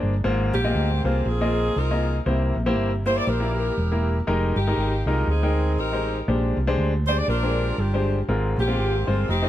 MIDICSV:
0, 0, Header, 1, 4, 480
1, 0, Start_track
1, 0, Tempo, 502513
1, 234, Time_signature, 4, 2, 24, 8
1, 9064, End_track
2, 0, Start_track
2, 0, Title_t, "Grand piano"
2, 0, Program_c, 0, 0
2, 0, Note_on_c, 0, 58, 67
2, 0, Note_on_c, 0, 62, 66
2, 0, Note_on_c, 0, 68, 62
2, 0, Note_on_c, 0, 72, 70
2, 122, Note_off_c, 0, 58, 0
2, 123, Note_off_c, 0, 62, 0
2, 123, Note_off_c, 0, 68, 0
2, 124, Note_off_c, 0, 72, 0
2, 230, Note_on_c, 0, 58, 84
2, 231, Note_on_c, 0, 65, 74
2, 231, Note_on_c, 0, 68, 69
2, 231, Note_on_c, 0, 72, 92
2, 232, Note_on_c, 0, 44, 71
2, 499, Note_off_c, 0, 58, 0
2, 499, Note_off_c, 0, 65, 0
2, 499, Note_off_c, 0, 68, 0
2, 499, Note_off_c, 0, 72, 0
2, 614, Note_on_c, 0, 65, 65
2, 615, Note_on_c, 0, 58, 76
2, 617, Note_on_c, 0, 68, 69
2, 617, Note_on_c, 0, 75, 80
2, 842, Note_off_c, 0, 58, 0
2, 842, Note_off_c, 0, 65, 0
2, 844, Note_off_c, 0, 68, 0
2, 844, Note_off_c, 0, 75, 0
2, 956, Note_off_c, 0, 44, 0
2, 1001, Note_on_c, 0, 65, 60
2, 1003, Note_on_c, 0, 58, 69
2, 1004, Note_on_c, 0, 68, 66
2, 1004, Note_on_c, 0, 72, 73
2, 1190, Note_off_c, 0, 65, 0
2, 1192, Note_off_c, 0, 58, 0
2, 1192, Note_off_c, 0, 68, 0
2, 1192, Note_off_c, 0, 72, 0
2, 1348, Note_on_c, 0, 58, 76
2, 1351, Note_on_c, 0, 75, 75
2, 1352, Note_on_c, 0, 68, 66
2, 1353, Note_on_c, 0, 65, 69
2, 1637, Note_off_c, 0, 58, 0
2, 1639, Note_off_c, 0, 75, 0
2, 1640, Note_off_c, 0, 65, 0
2, 1640, Note_off_c, 0, 68, 0
2, 1824, Note_on_c, 0, 75, 69
2, 1825, Note_on_c, 0, 58, 65
2, 1827, Note_on_c, 0, 65, 59
2, 1827, Note_on_c, 0, 68, 59
2, 2052, Note_off_c, 0, 58, 0
2, 2052, Note_off_c, 0, 75, 0
2, 2053, Note_off_c, 0, 65, 0
2, 2053, Note_off_c, 0, 68, 0
2, 2159, Note_on_c, 0, 48, 59
2, 2159, Note_on_c, 0, 58, 68
2, 2160, Note_on_c, 0, 72, 77
2, 2162, Note_on_c, 0, 64, 59
2, 2167, Note_on_c, 0, 67, 64
2, 2425, Note_off_c, 0, 58, 0
2, 2425, Note_off_c, 0, 72, 0
2, 2426, Note_off_c, 0, 64, 0
2, 2429, Note_off_c, 0, 67, 0
2, 2542, Note_on_c, 0, 58, 91
2, 2543, Note_on_c, 0, 67, 81
2, 2544, Note_on_c, 0, 72, 98
2, 2549, Note_on_c, 0, 64, 76
2, 2768, Note_off_c, 0, 58, 0
2, 2768, Note_off_c, 0, 67, 0
2, 2769, Note_off_c, 0, 72, 0
2, 2771, Note_off_c, 0, 64, 0
2, 2881, Note_off_c, 0, 48, 0
2, 2921, Note_on_c, 0, 58, 74
2, 2922, Note_on_c, 0, 67, 64
2, 2925, Note_on_c, 0, 64, 67
2, 2926, Note_on_c, 0, 72, 83
2, 3112, Note_off_c, 0, 58, 0
2, 3113, Note_off_c, 0, 67, 0
2, 3114, Note_off_c, 0, 64, 0
2, 3114, Note_off_c, 0, 72, 0
2, 3248, Note_on_c, 0, 58, 77
2, 3249, Note_on_c, 0, 67, 60
2, 3250, Note_on_c, 0, 64, 66
2, 3251, Note_on_c, 0, 70, 73
2, 3549, Note_off_c, 0, 58, 0
2, 3549, Note_off_c, 0, 67, 0
2, 3550, Note_off_c, 0, 64, 0
2, 3550, Note_off_c, 0, 70, 0
2, 3741, Note_on_c, 0, 64, 62
2, 3742, Note_on_c, 0, 70, 76
2, 3743, Note_on_c, 0, 67, 65
2, 3744, Note_on_c, 0, 58, 67
2, 3971, Note_off_c, 0, 64, 0
2, 3972, Note_off_c, 0, 67, 0
2, 3972, Note_off_c, 0, 70, 0
2, 3973, Note_off_c, 0, 58, 0
2, 4079, Note_on_c, 0, 56, 85
2, 4081, Note_on_c, 0, 63, 77
2, 4084, Note_on_c, 0, 67, 76
2, 4084, Note_on_c, 0, 70, 93
2, 4346, Note_off_c, 0, 56, 0
2, 4347, Note_off_c, 0, 63, 0
2, 4348, Note_off_c, 0, 67, 0
2, 4348, Note_off_c, 0, 70, 0
2, 4462, Note_on_c, 0, 70, 82
2, 4465, Note_on_c, 0, 67, 70
2, 4466, Note_on_c, 0, 63, 74
2, 4467, Note_on_c, 0, 56, 67
2, 4688, Note_off_c, 0, 70, 0
2, 4690, Note_off_c, 0, 63, 0
2, 4690, Note_off_c, 0, 67, 0
2, 4691, Note_off_c, 0, 56, 0
2, 4842, Note_on_c, 0, 67, 67
2, 4843, Note_on_c, 0, 56, 72
2, 4844, Note_on_c, 0, 63, 69
2, 4845, Note_on_c, 0, 70, 81
2, 5033, Note_off_c, 0, 56, 0
2, 5033, Note_off_c, 0, 67, 0
2, 5034, Note_off_c, 0, 63, 0
2, 5035, Note_off_c, 0, 70, 0
2, 5183, Note_on_c, 0, 56, 72
2, 5187, Note_on_c, 0, 79, 65
2, 5188, Note_on_c, 0, 63, 63
2, 5190, Note_on_c, 0, 70, 70
2, 5476, Note_off_c, 0, 56, 0
2, 5478, Note_off_c, 0, 79, 0
2, 5479, Note_off_c, 0, 63, 0
2, 5480, Note_off_c, 0, 70, 0
2, 5659, Note_on_c, 0, 63, 65
2, 5663, Note_on_c, 0, 56, 65
2, 5663, Note_on_c, 0, 67, 58
2, 5670, Note_on_c, 0, 72, 65
2, 5890, Note_off_c, 0, 63, 0
2, 5892, Note_off_c, 0, 56, 0
2, 5892, Note_off_c, 0, 67, 0
2, 5895, Note_off_c, 0, 72, 0
2, 5999, Note_on_c, 0, 46, 62
2, 5999, Note_on_c, 0, 62, 69
2, 6000, Note_on_c, 0, 56, 65
2, 6000, Note_on_c, 0, 67, 69
2, 6005, Note_on_c, 0, 72, 74
2, 6265, Note_off_c, 0, 56, 0
2, 6265, Note_off_c, 0, 62, 0
2, 6265, Note_off_c, 0, 67, 0
2, 6268, Note_off_c, 0, 72, 0
2, 6375, Note_on_c, 0, 72, 98
2, 6376, Note_on_c, 0, 56, 92
2, 6377, Note_on_c, 0, 62, 81
2, 6377, Note_on_c, 0, 67, 77
2, 6604, Note_off_c, 0, 56, 0
2, 6604, Note_off_c, 0, 72, 0
2, 6605, Note_off_c, 0, 62, 0
2, 6605, Note_off_c, 0, 67, 0
2, 6719, Note_off_c, 0, 46, 0
2, 6765, Note_on_c, 0, 67, 59
2, 6769, Note_on_c, 0, 56, 67
2, 6769, Note_on_c, 0, 62, 61
2, 6769, Note_on_c, 0, 74, 76
2, 6953, Note_off_c, 0, 67, 0
2, 6955, Note_off_c, 0, 56, 0
2, 6955, Note_off_c, 0, 62, 0
2, 6955, Note_off_c, 0, 74, 0
2, 7093, Note_on_c, 0, 67, 63
2, 7096, Note_on_c, 0, 62, 64
2, 7098, Note_on_c, 0, 72, 71
2, 7099, Note_on_c, 0, 56, 66
2, 7390, Note_off_c, 0, 67, 0
2, 7391, Note_off_c, 0, 62, 0
2, 7392, Note_off_c, 0, 72, 0
2, 7393, Note_off_c, 0, 56, 0
2, 7581, Note_on_c, 0, 62, 53
2, 7584, Note_on_c, 0, 67, 64
2, 7586, Note_on_c, 0, 56, 64
2, 7586, Note_on_c, 0, 72, 78
2, 7809, Note_off_c, 0, 62, 0
2, 7811, Note_off_c, 0, 67, 0
2, 7812, Note_off_c, 0, 56, 0
2, 7812, Note_off_c, 0, 72, 0
2, 7915, Note_on_c, 0, 60, 63
2, 7915, Note_on_c, 0, 70, 80
2, 7916, Note_on_c, 0, 44, 60
2, 7917, Note_on_c, 0, 56, 75
2, 7918, Note_on_c, 0, 65, 63
2, 8181, Note_off_c, 0, 60, 0
2, 8181, Note_off_c, 0, 70, 0
2, 8182, Note_off_c, 0, 56, 0
2, 8182, Note_off_c, 0, 65, 0
2, 8287, Note_on_c, 0, 67, 80
2, 8291, Note_on_c, 0, 56, 71
2, 8293, Note_on_c, 0, 60, 62
2, 8296, Note_on_c, 0, 65, 70
2, 8517, Note_off_c, 0, 67, 0
2, 8519, Note_off_c, 0, 56, 0
2, 8520, Note_off_c, 0, 60, 0
2, 8522, Note_off_c, 0, 65, 0
2, 8635, Note_off_c, 0, 44, 0
2, 8663, Note_on_c, 0, 56, 72
2, 8666, Note_on_c, 0, 65, 66
2, 8667, Note_on_c, 0, 60, 63
2, 8669, Note_on_c, 0, 72, 81
2, 8860, Note_off_c, 0, 56, 0
2, 8861, Note_off_c, 0, 60, 0
2, 8861, Note_off_c, 0, 65, 0
2, 8863, Note_off_c, 0, 72, 0
2, 9003, Note_on_c, 0, 63, 70
2, 9004, Note_on_c, 0, 57, 68
2, 9006, Note_on_c, 0, 65, 62
2, 9008, Note_on_c, 0, 72, 69
2, 9064, Note_off_c, 0, 57, 0
2, 9064, Note_off_c, 0, 63, 0
2, 9064, Note_off_c, 0, 65, 0
2, 9064, Note_off_c, 0, 72, 0
2, 9064, End_track
3, 0, Start_track
3, 0, Title_t, "Saxophone section"
3, 0, Program_c, 1, 65
3, 0, Note_on_c, 1, 53, 64
3, 0, Note_on_c, 1, 56, 56
3, 197, Note_off_c, 1, 56, 0
3, 198, Note_off_c, 1, 53, 0
3, 512, Note_on_c, 1, 60, 68
3, 513, Note_on_c, 1, 58, 71
3, 515, Note_on_c, 1, 67, 100
3, 962, Note_off_c, 1, 67, 0
3, 1011, Note_on_c, 1, 65, 82
3, 1189, Note_off_c, 1, 60, 0
3, 1190, Note_off_c, 1, 65, 0
3, 1201, Note_on_c, 1, 60, 76
3, 1201, Note_on_c, 1, 65, 77
3, 1220, Note_on_c, 1, 68, 111
3, 1438, Note_off_c, 1, 58, 0
3, 1679, Note_off_c, 1, 65, 0
3, 1690, Note_off_c, 1, 68, 0
3, 1690, Note_on_c, 1, 63, 72
3, 1691, Note_on_c, 1, 65, 78
3, 1701, Note_on_c, 1, 70, 102
3, 2069, Note_off_c, 1, 70, 0
3, 2123, Note_off_c, 1, 60, 0
3, 2132, Note_off_c, 1, 63, 0
3, 2132, Note_off_c, 1, 65, 0
3, 2932, Note_on_c, 1, 72, 95
3, 3020, Note_off_c, 1, 72, 0
3, 3027, Note_on_c, 1, 74, 104
3, 3122, Note_on_c, 1, 67, 74
3, 3124, Note_off_c, 1, 74, 0
3, 3124, Note_on_c, 1, 64, 72
3, 3137, Note_on_c, 1, 70, 106
3, 3385, Note_off_c, 1, 64, 0
3, 3386, Note_off_c, 1, 67, 0
3, 3397, Note_on_c, 1, 64, 61
3, 3397, Note_on_c, 1, 67, 65
3, 3403, Note_off_c, 1, 70, 0
3, 3415, Note_on_c, 1, 70, 90
3, 3855, Note_off_c, 1, 70, 0
3, 4042, Note_off_c, 1, 64, 0
3, 4042, Note_off_c, 1, 67, 0
3, 4365, Note_on_c, 1, 63, 70
3, 4366, Note_on_c, 1, 67, 100
3, 4369, Note_on_c, 1, 58, 69
3, 4810, Note_off_c, 1, 67, 0
3, 4848, Note_on_c, 1, 65, 84
3, 5040, Note_off_c, 1, 63, 0
3, 5046, Note_off_c, 1, 65, 0
3, 5051, Note_on_c, 1, 63, 85
3, 5053, Note_on_c, 1, 68, 110
3, 5056, Note_on_c, 1, 60, 86
3, 5286, Note_off_c, 1, 58, 0
3, 5518, Note_off_c, 1, 63, 0
3, 5527, Note_off_c, 1, 68, 0
3, 5529, Note_on_c, 1, 63, 72
3, 5529, Note_on_c, 1, 67, 76
3, 5534, Note_on_c, 1, 70, 95
3, 5907, Note_off_c, 1, 70, 0
3, 5970, Note_off_c, 1, 60, 0
3, 5972, Note_off_c, 1, 63, 0
3, 5972, Note_off_c, 1, 67, 0
3, 6755, Note_on_c, 1, 72, 92
3, 6850, Note_off_c, 1, 72, 0
3, 6863, Note_on_c, 1, 74, 95
3, 6962, Note_off_c, 1, 74, 0
3, 6962, Note_on_c, 1, 70, 106
3, 6970, Note_on_c, 1, 62, 86
3, 6970, Note_on_c, 1, 65, 79
3, 7433, Note_off_c, 1, 62, 0
3, 7440, Note_off_c, 1, 70, 0
3, 7444, Note_on_c, 1, 62, 58
3, 7448, Note_on_c, 1, 60, 59
3, 7448, Note_on_c, 1, 67, 85
3, 7821, Note_off_c, 1, 67, 0
3, 7884, Note_off_c, 1, 65, 0
3, 7887, Note_off_c, 1, 62, 0
3, 7889, Note_off_c, 1, 60, 0
3, 8200, Note_on_c, 1, 58, 74
3, 8200, Note_on_c, 1, 60, 73
3, 8216, Note_on_c, 1, 67, 94
3, 8651, Note_off_c, 1, 67, 0
3, 8683, Note_on_c, 1, 65, 78
3, 8838, Note_off_c, 1, 58, 0
3, 8838, Note_off_c, 1, 60, 0
3, 8877, Note_on_c, 1, 60, 83
3, 8877, Note_on_c, 1, 63, 80
3, 8879, Note_off_c, 1, 65, 0
3, 8881, Note_on_c, 1, 67, 116
3, 9064, Note_off_c, 1, 60, 0
3, 9064, Note_off_c, 1, 63, 0
3, 9064, Note_off_c, 1, 67, 0
3, 9064, End_track
4, 0, Start_track
4, 0, Title_t, "Fingered electric bass"
4, 0, Program_c, 2, 33
4, 29, Note_on_c, 2, 31, 81
4, 202, Note_off_c, 2, 31, 0
4, 236, Note_on_c, 2, 32, 110
4, 473, Note_off_c, 2, 32, 0
4, 514, Note_on_c, 2, 34, 88
4, 686, Note_off_c, 2, 34, 0
4, 714, Note_on_c, 2, 38, 94
4, 952, Note_off_c, 2, 38, 0
4, 995, Note_on_c, 2, 36, 97
4, 1167, Note_off_c, 2, 36, 0
4, 1201, Note_on_c, 2, 34, 108
4, 1608, Note_off_c, 2, 34, 0
4, 1684, Note_on_c, 2, 36, 82
4, 2090, Note_off_c, 2, 36, 0
4, 2159, Note_on_c, 2, 36, 108
4, 2396, Note_off_c, 2, 36, 0
4, 2446, Note_on_c, 2, 34, 91
4, 2645, Note_off_c, 2, 34, 0
4, 2645, Note_on_c, 2, 31, 89
4, 3051, Note_off_c, 2, 31, 0
4, 3125, Note_on_c, 2, 34, 93
4, 3531, Note_off_c, 2, 34, 0
4, 3605, Note_on_c, 2, 28, 96
4, 4012, Note_off_c, 2, 28, 0
4, 4085, Note_on_c, 2, 29, 116
4, 4320, Note_off_c, 2, 29, 0
4, 4356, Note_on_c, 2, 31, 97
4, 4529, Note_off_c, 2, 31, 0
4, 4559, Note_on_c, 2, 32, 87
4, 4797, Note_off_c, 2, 32, 0
4, 4834, Note_on_c, 2, 36, 83
4, 5008, Note_off_c, 2, 36, 0
4, 5037, Note_on_c, 2, 38, 98
4, 5519, Note_off_c, 2, 38, 0
4, 5519, Note_on_c, 2, 33, 81
4, 5928, Note_off_c, 2, 33, 0
4, 5998, Note_on_c, 2, 34, 108
4, 6236, Note_off_c, 2, 34, 0
4, 6274, Note_on_c, 2, 36, 94
4, 6447, Note_off_c, 2, 36, 0
4, 6473, Note_on_c, 2, 38, 87
4, 6883, Note_off_c, 2, 38, 0
4, 6953, Note_on_c, 2, 34, 97
4, 7363, Note_off_c, 2, 34, 0
4, 7431, Note_on_c, 2, 31, 89
4, 7841, Note_off_c, 2, 31, 0
4, 7913, Note_on_c, 2, 32, 101
4, 8151, Note_off_c, 2, 32, 0
4, 8195, Note_on_c, 2, 34, 91
4, 8366, Note_off_c, 2, 34, 0
4, 8392, Note_on_c, 2, 32, 90
4, 8630, Note_off_c, 2, 32, 0
4, 8671, Note_on_c, 2, 31, 91
4, 8843, Note_off_c, 2, 31, 0
4, 8872, Note_on_c, 2, 29, 99
4, 9064, Note_off_c, 2, 29, 0
4, 9064, End_track
0, 0, End_of_file